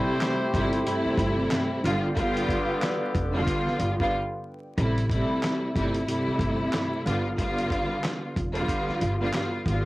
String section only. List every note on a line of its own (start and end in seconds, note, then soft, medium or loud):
0.00 0.49 C3 loud
0.00 0.49 G3 loud
0.00 0.50 A3 medium
0.00 0.50 E4 loud
0.53 0.84 C3 loud
0.53 0.84 G3 loud
0.53 0.84 A3 medium
0.53 0.84 E4 loud
0.85 1.84 C3 loud
0.85 1.83 G3 medium
0.85 1.84 A3 medium
0.85 1.84 E4 loud
1.84 2.06 D3 loud
1.84 2.06 G3 medium
1.84 2.06 B3 medium
1.84 2.06 F4 loud
2.17 3.08 D3 loud
2.17 3.08 G3 medium
2.17 3.08 B3 loud
2.17 3.08 F4 loud
3.33 3.92 D3 medium
3.33 3.93 G3 medium
3.33 3.93 B3 medium
3.33 3.93 F4 loud
3.99 4.13 D3 loud
3.99 4.13 G3 medium
3.99 4.13 B3 medium
3.99 4.13 F4 loud
4.78 5.08 C3 medium
4.78 5.08 G3 medium
4.78 5.08 A3 medium
4.78 5.08 E4 loud
5.10 5.71 C3 medium
5.10 5.71 G3 medium
5.10 5.71 A3 medium
5.10 5.71 E4 loud
5.75 6.05 C3 loud
5.75 6.06 G3 medium
5.75 6.06 A3 medium
5.75 6.06 E4 loud
6.07 7.05 C3 loud
6.07 7.04 G3 medium
6.07 7.06 A3 medium
6.07 7.06 E4 loud
7.05 7.28 D3 medium
7.05 7.28 G3 medium
7.05 7.28 B3 medium
7.05 7.28 F4 loud
7.38 8.30 D3 medium
7.38 8.30 G3 medium
7.38 8.30 B3 medium
7.38 8.30 F4 loud
8.55 9.14 D3 medium
8.55 9.14 G3 medium
8.55 9.14 B3 medium
8.55 9.15 F4 loud
9.21 9.32 D3 loud
9.21 9.33 G3 medium
9.21 9.33 B3 medium
9.21 9.33 F4 loud
9.34 9.64 D3 medium
9.34 9.64 G3 medium
9.34 9.65 B3 medium
9.34 9.65 F4 medium
9.67 9.85 D3 medium
9.67 9.85 G3 medium
9.67 9.85 B3 medium
9.67 9.85 F4 medium